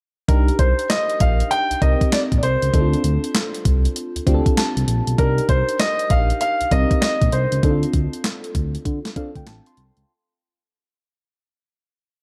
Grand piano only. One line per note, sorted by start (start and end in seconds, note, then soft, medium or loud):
0.28 0.60 A#4 medium
0.59 0.88 C5 medium
0.90 1.18 D#5 loud
1.21 1.52 F5 medium
1.51 1.79 G5 loud
1.82 2.10 D#5 medium
2.13 2.18 D5 medium
2.38 2.43 D5 medium
2.43 3.31 C5 loud
5.19 5.47 A#4 medium
5.49 5.77 C5 medium
5.80 6.11 D#5 loud
6.10 6.39 F5 loud
6.41 6.72 F5 loud
6.72 7.00 D#5 loud
7.01 7.33 D#5 medium
7.32 8.20 C5 medium